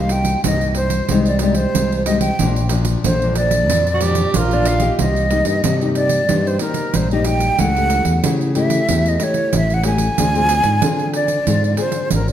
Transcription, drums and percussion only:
0.09 pandeiro medium
0.25 pandeiro medium
0.44 pandeiro medium
0.61 pandeiro soft
0.75 pandeiro medium
0.90 pandeiro medium
1.09 pandeiro medium
1.25 pandeiro soft
1.39 pandeiro medium
1.55 pandeiro medium
1.75 pandeiro medium
1.92 pandeiro soft
2.06 pandeiro medium
2.21 pandeiro medium
2.39 pandeiro medium
2.56 pandeiro soft
2.69 pandeiro medium
2.85 pandeiro medium
3.04 pandeiro medium
3.22 pandeiro soft
3.35 pandeiro medium
3.51 pandeiro medium
3.70 pandeiro medium
3.87 pandeiro soft
4.01 pandeiro medium
4.15 pandeiro medium
4.34 pandeiro medium
4.51 pandeiro soft
4.65 pandeiro medium
4.80 pandeiro medium
4.99 pandeiro medium
5.16 pandeiro soft
5.31 pandeiro medium
5.45 pandeiro medium
5.64 pandeiro medium
5.81 pandeiro soft
5.95 pandeiro soft
6.09 pandeiro medium
6.29 pandeiro medium
6.47 pandeiro soft
6.59 pandeiro medium
6.74 pandeiro medium
6.94 pandeiro medium
7.11 pandeiro soft
7.24 pandeiro medium
7.40 pandeiro medium
7.59 pandeiro medium
7.76 pandeiro soft
7.90 pandeiro medium
8.05 pandeiro medium
8.24 pandeiro medium
8.41 pandeiro soft
8.55 pandeiro medium
8.70 pandeiro medium
8.89 pandeiro medium
9.06 pandeiro soft
9.20 pandeiro medium
9.34 pandeiro soft
9.53 pandeiro medium
9.70 pandeiro soft
9.84 pandeiro medium
9.98 pandeiro medium
10.18 pandeiro medium
10.35 pandeiro soft
10.49 pandeiro medium
10.63 pandeiro medium
10.82 pandeiro medium
10.99 pandeiro soft
11.14 pandeiro medium
11.28 pandeiro soft
11.47 pandeiro medium
11.64 pandeiro soft
11.77 pandeiro medium
11.92 pandeiro medium
12.11 pandeiro medium
12.28 pandeiro soft

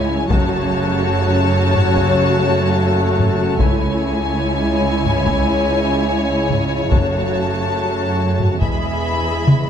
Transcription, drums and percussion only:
0.30 taiko loud
1.75 taiko low-mid soft
1.95 taiko medium
3.19 taiko low-mid medium
3.60 taiko medium
5.06 taiko low-mid soft
5.26 taiko medium
6.50 taiko low-mid medium
6.92 taiko medium
8.40 taiko low-mid soft
8.62 taiko medium
9.47 taiko mid medium

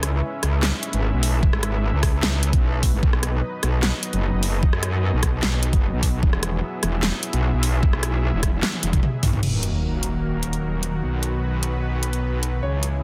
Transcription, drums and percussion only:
0.03 cross-stick medium
0.03 closed hi-hat medium
0.43 cross-stick medium
0.43 closed hi-hat medium
0.63 snare loud
0.63 clap loud
0.83 closed hi-hat medium
0.93 closed hi-hat soft
1.23 open hi-hat medium
1.43 kick loud
1.53 cross-stick medium
1.63 cross-stick medium
1.63 closed hi-hat medium
2.03 kick medium
2.03 cross-stick medium
2.03 open hi-hat medium
2.23 snare loud
2.23 clap medium
2.43 closed hi-hat medium
2.53 kick loud
2.53 closed hi-hat soft
2.83 kick medium
2.83 open hi-hat loud
3.03 kick loud
3.13 cross-stick medium
3.23 cross-stick medium
3.23 closed hi-hat medium
3.63 cross-stick medium
3.63 closed hi-hat medium
3.83 snare loud
3.83 clap medium
4.03 closed hi-hat medium
4.13 closed hi-hat soft
4.43 open hi-hat loud
4.63 kick loud
4.73 cross-stick medium
4.83 cross-stick medium
4.83 closed hi-hat medium
5.23 kick medium
5.23 cross-stick medium
5.23 closed hi-hat medium
5.43 snare loud
5.43 clap medium
5.63 closed hi-hat medium
5.73 kick loud
5.73 closed hi-hat soft
6.03 kick medium
6.03 open hi-hat loud
6.23 kick loud
6.33 cross-stick medium
6.43 cross-stick medium
6.43 closed hi-hat medium
6.83 cross-stick medium
6.83 closed hi-hat medium
7.03 snare loud
7.03 clap medium
7.23 closed hi-hat medium
7.33 closed hi-hat soft
7.63 open hi-hat loud
7.83 kick loud
7.93 cross-stick medium
8.03 cross-stick medium
8.03 closed hi-hat medium
8.43 kick medium
8.43 cross-stick medium
8.43 closed hi-hat medium
8.63 snare loud
8.63 clap medium
8.63 high tom medium
8.73 high tom medium
8.83 closed hi-hat medium
8.93 kick loud
8.93 closed hi-hat soft
8.93 mid tom medium
9.03 mid tom medium
9.23 kick medium
9.23 mid tom loud
9.23 open hi-hat loud
9.33 mid tom medium
9.43 crash medium
9.63 closed hi-hat medium
10.03 closed hi-hat medium
10.43 closed hi-hat medium
10.53 closed hi-hat soft
10.83 closed hi-hat medium
11.23 closed hi-hat medium
11.63 closed hi-hat medium
12.03 closed hi-hat medium
12.13 closed hi-hat soft
12.43 closed hi-hat medium
12.83 closed hi-hat medium

